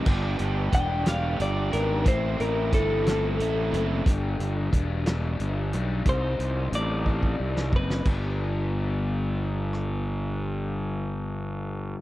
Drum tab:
CC |x-----------|------------|------------|------------|
HH |--x-x-x-x-x-|x-x-x-x-x-x-|x-x-x-x-x-x-|x-x-x-------|
SD |------o-----|------o-----|------o-----|---------o-o|
BD |o---o-------|o---o-------|o---o-------|o-----oo--o-|

CC |x-----------|------------|
HH |------------|------------|
SD |----------r-|------------|
BD |o-----------|------------|